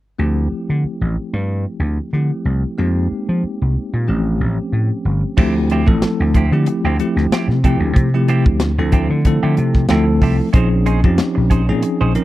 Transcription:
0.19 slap bass D2, tine electric piano F3 A3 C4 E4 G4
0.52 muted slap bass stroke
0.70 slap bass D3
0.84 muted slap bass stroke
1.01 slap bass A1
1.16 muted slap bass stroke
1.33 slap bass G2
1.80 slap bass D2
2.13 slap bass D3, tine electric piano F3 A3 C4 E4 G4
2.45 slap bass C2
2.64 muted slap bass stroke
2.78 slap bass F2, tine electric piano G#3 A#3 C4 D#4 G4
3.11 muted slap bass stroke
3.29 slap bass F3
3.43 muted slap bass stroke
3.62 slap bass C2
3.77 muted slap bass stroke
3.93 slap bass A#2
4.08 slap bass A1, tine electric piano F3 A3 C4 C#4 G4
4.40 slap bass A1
4.73 slap bass A2
5.05 slap bass G1
5.23 muted slap bass stroke
5.37 slap bass D2, tine electric piano F3 A3 C4 E4 G4, clean electric guitar F3 C4 E4 G4, kick, crash
5.57 muted clean electric guitar stroke
5.70 clean electric guitar F3 C4 E4 G4, closed hi-hat
5.86 slap bass A1, tine electric piano F3 A3 C4 E4 A4, muted clean electric guitar stroke, kick
6.02 snare, closed hi-hat
6.20 slap bass D2, muted clean electric guitar stroke
6.34 clean electric guitar F3 C4 E4 G4, kick, closed hi-hat
6.52 slap bass D3, tine electric piano F3 A3 C4 E4 G4
6.66 muted clean electric guitar stroke, closed hi-hat
6.84 slap bass D2, clean electric guitar F3 C4 E4 G4
7.00 tine electric piano F3 A3 C4 E4 G4, closed hi-hat
7.16 slap bass D2, snare
7.32 clean electric guitar F3 C4 E4 G4, snare, closed hi-hat
7.48 slap bass C3, muted clean electric guitar stroke, snare
7.64 clean electric guitar F3 C4 E4 G4, tine electric piano F3 A3 C4 E4 G4, kick, closed hi-hat
7.80 slap bass D2, muted clean electric guitar stroke
7.96 slap bass C3, kick, closed hi-hat
8.14 tine electric piano F3 A3 C4 E4 G4, muted clean electric guitar stroke
8.28 clean electric guitar F3 C4 E4 G4, closed hi-hat
8.46 slap bass D2, muted clean electric guitar stroke, kick
8.60 snare, closed hi-hat
8.78 slap bass D2, tine electric piano F3 A3 C4 E4 A4, muted clean electric guitar stroke
8.92 clean electric guitar F3 C4 E4 G4, kick, closed hi-hat
9.10 slap bass D3, muted clean electric guitar stroke
9.25 tine electric piano F3 A3 C4 E4 A4, muted clean electric guitar stroke, kick, closed hi-hat
9.43 slap bass D3, clean electric guitar F3 C4 E4 G4
9.57 slap bass C3, muted clean electric guitar stroke, closed hi-hat
9.74 kick, snare
9.89 slap bass D2, clean electric guitar F3 C4 E4 G4, tine electric piano F3 A3 C4 E4 A4, snare, closed hi-hat
10.08 muted clean electric guitar stroke
10.21 slap bass C2, clean electric guitar F3 C4 E4 G4, kick, open hi-hat
10.39 muted clean electric guitar stroke
10.53 slap bass A#1, tine electric piano F3 C4 C#4 D#4 G#4, clean electric guitar C#4 D#4 G#4 C5, kick, closed hi-hat
10.72 muted clean electric guitar stroke
10.86 clean electric guitar C#4 D#4 G#4 C5, closed hi-hat
11.03 slap bass F2, tine electric piano F3 C4 C#4 D#4 G4, muted clean electric guitar stroke, kick
11.18 snare, closed hi-hat
11.35 slap bass A#1, muted clean electric guitar stroke
11.50 clean electric guitar C#4 D#4 G#4 C5, kick, closed hi-hat
11.69 slap bass A#2, tine electric piano F3 C4 C#4 D#4 G#4, muted clean electric guitar stroke
11.82 muted clean electric guitar stroke, closed hi-hat
12.01 slap bass A#1, clean electric guitar C#4 D#4 G#4 C5
12.15 tine electric piano F3 C4 C#4 D#4 A#4, closed hi-hat

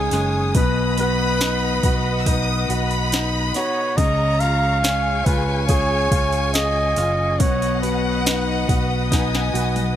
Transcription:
Already playing: steel-string acoustic guitar C#3 C#4 D#4 G#4, grand piano C#3 G#3, flugelhorn G#4, string section C#5 G#5 D#6, violin section G#5
0.11 fingered electric bass F#1, grand piano G#3, steel-string acoustic guitar C#4, snare, open hi-hat
0.55 fingered electric bass B1, steel-string acoustic guitar B2, grand piano B2, string section B4 D#5 F#5, flugelhorn B4, violin section B5, kick, open hi-hat
0.98 steel-string acoustic guitar B3, grand piano F#4, flugelhorn B4, open hi-hat
1.41 steel-string acoustic guitar D#4, grand piano D#4, snare, open hi-hat
1.83 fingered electric bass B1, grand piano F#4, steel-string acoustic guitar B4, kick, open hi-hat
2.19 violin section E6
2.26 grand piano D#4, steel-string acoustic guitar D#4, violin section D#6, kick, open hi-hat
2.69 fingered electric bass B1, steel-string acoustic guitar B3, grand piano F#4, violin section B5, open hi-hat
2.91 open hi-hat
3.12 steel-string acoustic guitar D#4, grand piano D#4, snare, open hi-hat
3.54 steel-string acoustic guitar B3, grand piano F#4, flugelhorn C#5, snare, open hi-hat
3.97 fingered electric bass C#2, steel-string acoustic guitar C#3, grand piano C#3, string section G#4 C#5 F5 C#6, flugelhorn D#5, violin section A#5, kick, open hi-hat
4.40 steel-string acoustic guitar C#4, grand piano F4, flugelhorn F5, open hi-hat
4.83 grand piano C#4, steel-string acoustic guitar F4, violin section G#5, snare, open hi-hat
5.25 fingered electric bass C#2, grand piano F4, steel-string acoustic guitar G#4, flugelhorn B4, kick, open hi-hat
5.67 steel-string acoustic guitar F4, grand piano G#4, flugelhorn C#5, kick, open hi-hat
6.11 fingered electric bass C#2, steel-string acoustic guitar C#4, grand piano F4, kick, open hi-hat
6.33 open hi-hat
6.53 steel-string acoustic guitar F4, grand piano G#4, flugelhorn D#5, snare, open hi-hat
6.96 fingered electric bass F#1, steel-string acoustic guitar C#4, grand piano F4, snare, open hi-hat
7.39 fingered electric bass B1, steel-string acoustic guitar B2, grand piano B2, string section B4 D#5 F#5 D#6, flugelhorn C#5, violin section F#5, kick, open hi-hat
7.62 open hi-hat
7.82 steel-string acoustic guitar B3, grand piano F#4, flugelhorn B4, open hi-hat
8.25 grand piano D#4, steel-string acoustic guitar D#4, snare, open hi-hat
8.68 fingered electric bass B1, grand piano F#4, steel-string acoustic guitar B4, kick, open hi-hat
9.11 grand piano D#4, steel-string acoustic guitar D#4, violin section G#5, kick, snare, open hi-hat
9.35 snare
9.53 fingered electric bass B1, steel-string acoustic guitar B3, grand piano F#4, open hi-hat
9.76 open hi-hat, high tom

